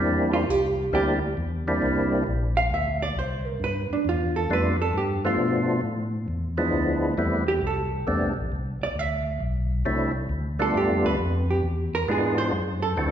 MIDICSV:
0, 0, Header, 1, 4, 480
1, 0, Start_track
1, 0, Tempo, 446097
1, 36, Time_signature, 4, 2, 24, 8
1, 14109, End_track
2, 0, Start_track
2, 0, Title_t, "Hollow-body jazz guitar"
2, 0, Program_c, 0, 26
2, 360, Note_on_c, 0, 65, 86
2, 540, Note_off_c, 0, 65, 0
2, 540, Note_on_c, 0, 67, 82
2, 1008, Note_off_c, 0, 67, 0
2, 1020, Note_on_c, 0, 67, 84
2, 1203, Note_off_c, 0, 67, 0
2, 2765, Note_on_c, 0, 77, 98
2, 2916, Note_off_c, 0, 77, 0
2, 2947, Note_on_c, 0, 76, 88
2, 3240, Note_off_c, 0, 76, 0
2, 3254, Note_on_c, 0, 74, 102
2, 3401, Note_off_c, 0, 74, 0
2, 3428, Note_on_c, 0, 72, 83
2, 3732, Note_off_c, 0, 72, 0
2, 3732, Note_on_c, 0, 70, 98
2, 3880, Note_off_c, 0, 70, 0
2, 3915, Note_on_c, 0, 71, 100
2, 4204, Note_off_c, 0, 71, 0
2, 4226, Note_on_c, 0, 62, 68
2, 4367, Note_off_c, 0, 62, 0
2, 4400, Note_on_c, 0, 65, 89
2, 4686, Note_off_c, 0, 65, 0
2, 4693, Note_on_c, 0, 69, 83
2, 4841, Note_off_c, 0, 69, 0
2, 4876, Note_on_c, 0, 71, 97
2, 5164, Note_off_c, 0, 71, 0
2, 5182, Note_on_c, 0, 69, 90
2, 5325, Note_off_c, 0, 69, 0
2, 5354, Note_on_c, 0, 67, 78
2, 5643, Note_off_c, 0, 67, 0
2, 5663, Note_on_c, 0, 65, 89
2, 6248, Note_off_c, 0, 65, 0
2, 8051, Note_on_c, 0, 67, 90
2, 8201, Note_off_c, 0, 67, 0
2, 8250, Note_on_c, 0, 69, 80
2, 8672, Note_off_c, 0, 69, 0
2, 9504, Note_on_c, 0, 74, 85
2, 9675, Note_off_c, 0, 74, 0
2, 9675, Note_on_c, 0, 76, 91
2, 10137, Note_off_c, 0, 76, 0
2, 11425, Note_on_c, 0, 69, 89
2, 11569, Note_off_c, 0, 69, 0
2, 11591, Note_on_c, 0, 67, 90
2, 11884, Note_off_c, 0, 67, 0
2, 11898, Note_on_c, 0, 71, 104
2, 12335, Note_off_c, 0, 71, 0
2, 12379, Note_on_c, 0, 67, 58
2, 12526, Note_off_c, 0, 67, 0
2, 12856, Note_on_c, 0, 70, 110
2, 13004, Note_off_c, 0, 70, 0
2, 13034, Note_on_c, 0, 68, 82
2, 13318, Note_off_c, 0, 68, 0
2, 13322, Note_on_c, 0, 72, 110
2, 13766, Note_off_c, 0, 72, 0
2, 13799, Note_on_c, 0, 69, 98
2, 13896, Note_off_c, 0, 69, 0
2, 14109, End_track
3, 0, Start_track
3, 0, Title_t, "Tonewheel organ"
3, 0, Program_c, 1, 16
3, 0, Note_on_c, 1, 55, 88
3, 0, Note_on_c, 1, 58, 73
3, 0, Note_on_c, 1, 60, 75
3, 0, Note_on_c, 1, 62, 77
3, 0, Note_on_c, 1, 64, 93
3, 478, Note_off_c, 1, 55, 0
3, 481, Note_off_c, 1, 58, 0
3, 481, Note_off_c, 1, 60, 0
3, 484, Note_off_c, 1, 62, 0
3, 484, Note_off_c, 1, 64, 0
3, 1000, Note_on_c, 1, 58, 52
3, 1001, Note_on_c, 1, 55, 59
3, 1004, Note_on_c, 1, 62, 55
3, 1005, Note_on_c, 1, 60, 51
3, 1009, Note_on_c, 1, 64, 69
3, 1283, Note_off_c, 1, 58, 0
3, 1284, Note_off_c, 1, 55, 0
3, 1285, Note_off_c, 1, 62, 0
3, 1286, Note_off_c, 1, 60, 0
3, 1287, Note_off_c, 1, 64, 0
3, 1802, Note_on_c, 1, 55, 81
3, 1805, Note_on_c, 1, 58, 72
3, 1806, Note_on_c, 1, 60, 69
3, 1807, Note_on_c, 1, 62, 71
3, 1808, Note_on_c, 1, 64, 91
3, 2407, Note_off_c, 1, 55, 0
3, 2408, Note_off_c, 1, 58, 0
3, 2409, Note_off_c, 1, 60, 0
3, 2409, Note_off_c, 1, 62, 0
3, 2410, Note_off_c, 1, 64, 0
3, 4844, Note_on_c, 1, 55, 67
3, 4847, Note_on_c, 1, 57, 59
3, 4850, Note_on_c, 1, 59, 60
3, 4851, Note_on_c, 1, 62, 62
3, 4853, Note_on_c, 1, 65, 74
3, 5126, Note_off_c, 1, 55, 0
3, 5127, Note_off_c, 1, 57, 0
3, 5128, Note_off_c, 1, 59, 0
3, 5129, Note_off_c, 1, 62, 0
3, 5130, Note_off_c, 1, 65, 0
3, 5645, Note_on_c, 1, 57, 65
3, 5648, Note_on_c, 1, 53, 78
3, 5649, Note_on_c, 1, 59, 69
3, 5652, Note_on_c, 1, 65, 79
3, 5655, Note_on_c, 1, 62, 71
3, 6249, Note_off_c, 1, 57, 0
3, 6251, Note_off_c, 1, 53, 0
3, 6251, Note_off_c, 1, 59, 0
3, 6253, Note_off_c, 1, 65, 0
3, 6254, Note_off_c, 1, 62, 0
3, 7074, Note_on_c, 1, 53, 75
3, 7076, Note_on_c, 1, 56, 66
3, 7078, Note_on_c, 1, 64, 83
3, 7079, Note_on_c, 1, 59, 66
3, 7081, Note_on_c, 1, 62, 71
3, 7684, Note_off_c, 1, 53, 0
3, 7685, Note_off_c, 1, 56, 0
3, 7686, Note_off_c, 1, 64, 0
3, 7687, Note_off_c, 1, 59, 0
3, 7688, Note_off_c, 1, 62, 0
3, 7720, Note_on_c, 1, 55, 63
3, 7725, Note_on_c, 1, 57, 60
3, 7729, Note_on_c, 1, 64, 75
3, 7731, Note_on_c, 1, 59, 60
3, 7733, Note_on_c, 1, 60, 66
3, 8004, Note_off_c, 1, 55, 0
3, 8007, Note_off_c, 1, 57, 0
3, 8009, Note_off_c, 1, 64, 0
3, 8010, Note_off_c, 1, 59, 0
3, 8011, Note_off_c, 1, 60, 0
3, 8682, Note_on_c, 1, 57, 62
3, 8685, Note_on_c, 1, 55, 67
3, 8689, Note_on_c, 1, 62, 70
3, 8690, Note_on_c, 1, 59, 60
3, 8692, Note_on_c, 1, 60, 60
3, 8966, Note_off_c, 1, 57, 0
3, 8967, Note_off_c, 1, 55, 0
3, 8969, Note_off_c, 1, 62, 0
3, 8970, Note_off_c, 1, 59, 0
3, 8971, Note_off_c, 1, 60, 0
3, 10602, Note_on_c, 1, 54, 67
3, 10602, Note_on_c, 1, 57, 57
3, 10605, Note_on_c, 1, 60, 59
3, 10605, Note_on_c, 1, 62, 63
3, 10611, Note_on_c, 1, 64, 74
3, 10886, Note_off_c, 1, 54, 0
3, 10886, Note_off_c, 1, 57, 0
3, 10888, Note_off_c, 1, 60, 0
3, 10888, Note_off_c, 1, 62, 0
3, 10891, Note_off_c, 1, 64, 0
3, 11397, Note_on_c, 1, 55, 75
3, 11401, Note_on_c, 1, 57, 67
3, 11401, Note_on_c, 1, 62, 61
3, 11402, Note_on_c, 1, 59, 67
3, 11408, Note_on_c, 1, 65, 82
3, 12007, Note_off_c, 1, 55, 0
3, 12009, Note_off_c, 1, 57, 0
3, 12009, Note_off_c, 1, 59, 0
3, 12009, Note_off_c, 1, 62, 0
3, 12012, Note_off_c, 1, 65, 0
3, 13002, Note_on_c, 1, 52, 68
3, 13002, Note_on_c, 1, 56, 64
3, 13002, Note_on_c, 1, 59, 62
3, 13005, Note_on_c, 1, 62, 61
3, 13011, Note_on_c, 1, 65, 75
3, 13481, Note_off_c, 1, 52, 0
3, 13481, Note_off_c, 1, 56, 0
3, 13481, Note_off_c, 1, 59, 0
3, 13482, Note_off_c, 1, 62, 0
3, 13485, Note_off_c, 1, 65, 0
3, 13956, Note_on_c, 1, 52, 63
3, 13959, Note_on_c, 1, 57, 58
3, 13959, Note_on_c, 1, 60, 58
3, 13962, Note_on_c, 1, 62, 55
3, 13964, Note_on_c, 1, 66, 66
3, 14109, Note_off_c, 1, 52, 0
3, 14109, Note_off_c, 1, 57, 0
3, 14109, Note_off_c, 1, 60, 0
3, 14109, Note_off_c, 1, 62, 0
3, 14109, Note_off_c, 1, 66, 0
3, 14109, End_track
4, 0, Start_track
4, 0, Title_t, "Tonewheel organ"
4, 0, Program_c, 2, 16
4, 28, Note_on_c, 2, 40, 79
4, 497, Note_off_c, 2, 40, 0
4, 515, Note_on_c, 2, 36, 95
4, 980, Note_off_c, 2, 36, 0
4, 991, Note_on_c, 2, 38, 89
4, 1458, Note_off_c, 2, 38, 0
4, 1476, Note_on_c, 2, 40, 89
4, 1941, Note_off_c, 2, 40, 0
4, 1959, Note_on_c, 2, 36, 89
4, 2422, Note_off_c, 2, 36, 0
4, 2441, Note_on_c, 2, 34, 98
4, 2903, Note_off_c, 2, 34, 0
4, 2910, Note_on_c, 2, 38, 88
4, 3378, Note_off_c, 2, 38, 0
4, 3391, Note_on_c, 2, 36, 92
4, 3858, Note_off_c, 2, 36, 0
4, 3870, Note_on_c, 2, 43, 88
4, 4168, Note_off_c, 2, 43, 0
4, 4197, Note_on_c, 2, 43, 43
4, 4277, Note_off_c, 2, 43, 0
4, 4354, Note_on_c, 2, 40, 98
4, 4820, Note_off_c, 2, 40, 0
4, 4833, Note_on_c, 2, 41, 88
4, 5300, Note_off_c, 2, 41, 0
4, 5311, Note_on_c, 2, 43, 91
4, 5779, Note_off_c, 2, 43, 0
4, 5803, Note_on_c, 2, 47, 83
4, 6265, Note_off_c, 2, 47, 0
4, 6277, Note_on_c, 2, 45, 96
4, 6743, Note_off_c, 2, 45, 0
4, 6756, Note_on_c, 2, 40, 86
4, 7222, Note_off_c, 2, 40, 0
4, 7237, Note_on_c, 2, 38, 82
4, 7703, Note_off_c, 2, 38, 0
4, 7721, Note_on_c, 2, 40, 81
4, 8185, Note_off_c, 2, 40, 0
4, 8196, Note_on_c, 2, 36, 96
4, 8662, Note_off_c, 2, 36, 0
4, 8679, Note_on_c, 2, 40, 91
4, 8834, Note_off_c, 2, 40, 0
4, 8839, Note_on_c, 2, 36, 59
4, 8998, Note_off_c, 2, 36, 0
4, 8999, Note_on_c, 2, 33, 68
4, 9147, Note_off_c, 2, 33, 0
4, 9166, Note_on_c, 2, 36, 95
4, 9458, Note_off_c, 2, 36, 0
4, 9480, Note_on_c, 2, 36, 42
4, 9560, Note_off_c, 2, 36, 0
4, 9635, Note_on_c, 2, 38, 84
4, 10102, Note_off_c, 2, 38, 0
4, 10119, Note_on_c, 2, 35, 100
4, 10584, Note_off_c, 2, 35, 0
4, 10598, Note_on_c, 2, 36, 95
4, 11064, Note_off_c, 2, 36, 0
4, 11076, Note_on_c, 2, 38, 89
4, 11543, Note_off_c, 2, 38, 0
4, 11559, Note_on_c, 2, 43, 82
4, 11714, Note_off_c, 2, 43, 0
4, 11721, Note_on_c, 2, 41, 61
4, 11877, Note_on_c, 2, 38, 68
4, 11880, Note_off_c, 2, 41, 0
4, 12027, Note_off_c, 2, 38, 0
4, 12040, Note_on_c, 2, 41, 105
4, 12505, Note_off_c, 2, 41, 0
4, 12518, Note_on_c, 2, 40, 87
4, 12984, Note_off_c, 2, 40, 0
4, 12999, Note_on_c, 2, 44, 90
4, 13465, Note_off_c, 2, 44, 0
4, 13471, Note_on_c, 2, 42, 87
4, 13941, Note_off_c, 2, 42, 0
4, 13957, Note_on_c, 2, 38, 103
4, 14109, Note_off_c, 2, 38, 0
4, 14109, End_track
0, 0, End_of_file